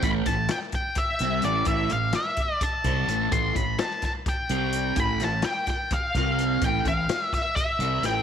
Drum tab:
HH |xxxxxxx|xxxxxxx|xxxxxxx|xxxxxxx|
SD |--o----|--o----|--oo---|-ooo-o-|
BD |oo-oo--|o--ooo-|oo-oo--|o--ooo-|

HH |xxxxxxx|
SD |--oo--o|
BD |oo-oo--|